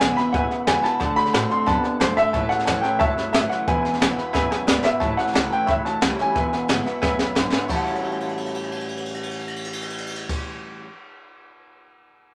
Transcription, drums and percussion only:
0.01 snare loud
0.01 hi-hat pedal loud
0.18 snare soft
0.34 kick loud
0.34 snare soft
0.51 snare soft
0.67 snare loud
0.67 hi-hat pedal medium
0.84 snare soft
1.00 kick loud
1.00 snare soft
1.18 snare soft
1.26 snare soft
1.34 snare loud
1.34 hi-hat pedal medium
1.51 snare soft
1.68 kick loud
1.68 snare soft
1.84 snare soft
2.01 snare loud
2.01 hi-hat pedal loud
2.18 snare soft
2.34 kick loud
2.34 snare soft
2.51 snare soft
2.59 snare soft
2.67 snare loud
2.67 hi-hat pedal medium
2.84 snare soft
3.01 kick loud
3.01 snare soft
3.18 snare soft
3.34 snare loud
3.34 hi-hat pedal medium
3.51 snare soft
3.68 kick loud
3.68 snare soft
3.85 snare soft
3.94 snare soft
4.02 snare loud
4.02 hi-hat pedal medium
4.18 snare soft
4.35 kick loud
4.35 snare medium
4.52 snare medium
4.68 snare loud
4.68 hi-hat pedal loud
4.85 snare medium
5.01 kick loud
5.01 snare soft
5.18 snare soft
5.27 snare soft
5.35 snare loud
5.35 hi-hat pedal medium
5.52 snare soft
5.68 kick loud
5.68 snare soft
5.86 snare soft
6.02 snare loud
6.02 hi-hat pedal medium
6.19 snare soft
6.36 kick loud
6.36 snare soft
6.53 snare soft
6.69 snare loud
6.69 hi-hat pedal medium
6.86 snare soft
7.03 kick loud
7.03 snare medium
7.19 snare medium
7.36 snare medium
7.36 hi-hat pedal medium
7.52 snare medium
7.70 kick loud
7.70 crash loud
7.87 crash medium
7.95 ride soft
8.04 crash soft
8.12 ride soft
8.20 crash soft
8.29 ride medium
8.37 crash medium
8.46 ride medium
8.55 crash medium
8.63 ride medium
8.72 crash medium
8.80 ride medium
8.88 crash medium
8.97 ride medium
9.05 crash medium
9.14 ride medium
9.23 crash medium
9.31 ride medium
9.39 crash medium
9.47 ride medium
9.56 crash medium
9.64 ride medium
9.73 crash medium
9.82 ride medium
9.90 crash medium
9.98 ride medium
10.07 crash loud
10.15 ride medium
10.29 kick loud
10.29 crash loud

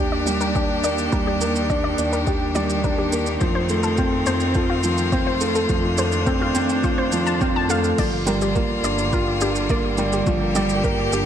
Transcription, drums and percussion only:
0.27 shaker medium
0.41 shaker soft
0.56 kick loud
0.56 shaker soft
0.84 shaker medium
0.98 shaker soft
1.12 kick medium
1.12 shaker soft
1.41 shaker medium
1.56 shaker soft
1.70 kick medium
1.70 shaker soft
1.98 shaker medium
2.13 shaker soft
2.27 kick medium
2.27 shaker soft
2.55 shaker medium
2.70 shaker soft
2.84 kick loud
2.84 shaker soft
3.12 shaker medium
3.26 shaker soft
3.41 kick loud
3.41 shaker soft
3.69 shaker medium
3.83 shaker soft
3.97 kick medium
3.97 shaker soft
4.26 shaker medium
4.40 shaker soft
4.54 kick loud
4.54 shaker soft
4.83 shaker medium
4.98 shaker soft
5.12 kick medium
5.12 shaker soft
5.41 shaker medium
5.55 shaker soft
5.69 kick medium
5.69 shaker soft
5.98 shaker medium
6.12 shaker soft
6.27 kick loud
6.27 shaker soft
6.55 shaker medium
6.69 shaker soft
6.84 kick loud
6.84 shaker soft
7.12 shaker medium
7.27 shaker soft
7.41 kick loud
7.41 shaker soft
7.70 shaker medium
7.84 shaker soft
7.98 kick loud
7.98 crash loud
7.98 shaker soft
8.27 shaker medium
8.42 shaker soft
8.56 kick loud
8.56 shaker soft
8.84 shaker medium
8.98 shaker soft
9.13 kick loud
9.13 shaker soft
9.41 shaker medium
9.56 shaker soft
9.69 kick loud
9.69 shaker soft
9.98 shaker medium
10.13 shaker soft
10.27 kick loud
10.27 shaker soft
10.55 shaker medium
10.69 shaker soft
10.84 kick loud
10.84 shaker soft
11.13 shaker medium

